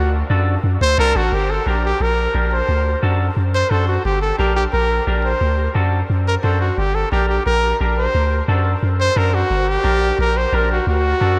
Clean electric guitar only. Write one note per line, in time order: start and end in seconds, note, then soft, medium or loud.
0.30 0.54 D4 medium
0.30 0.54 F#4 medium
0.30 0.54 A4 medium
0.98 1.22 D4 medium
0.98 1.22 F#4 medium
0.98 1.22 A4 loud
1.66 1.90 D4 medium
1.66 1.90 G4 medium
1.66 1.91 A#4 medium
2.34 2.58 D4 medium
2.34 2.58 G4 medium
2.34 2.59 A#4 medium
3.02 3.26 D4 medium
3.02 3.27 F#4 medium
3.02 3.27 A4 medium
3.71 3.95 D4 medium
3.71 3.95 F#4 medium
3.71 3.95 C5 medium
4.38 4.63 D4 medium
4.38 4.63 G4 medium
4.38 4.63 A#4 medium
5.07 5.31 D4 medium
5.07 5.31 G4 medium
5.07 5.31 A#4 medium
5.75 5.99 D4 medium
5.75 5.99 F#4 medium
5.75 5.99 A4 medium
6.43 6.67 D4 medium
6.43 6.68 F#4 medium
6.43 6.68 C5 medium
7.12 7.36 D4 medium
7.12 7.36 G4 medium
7.12 7.36 A#4 medium
7.81 8.04 D4 medium
7.81 8.04 G4 medium
7.81 8.05 A#4 medium
8.48 8.72 D4 medium
8.48 8.72 F#4 medium
8.48 8.73 A4 medium
9.16 9.40 D4 medium
9.16 9.40 F#4 medium
9.16 9.41 A4 medium
9.84 10.08 D4 medium
9.84 10.08 G4 medium
9.84 10.09 A#4 medium
10.53 10.77 D4 medium
10.53 10.77 G4 medium
10.53 10.77 A#4 medium
11.21 11.39 D4 medium
11.21 11.39 F#4 medium
11.21 11.39 A4 medium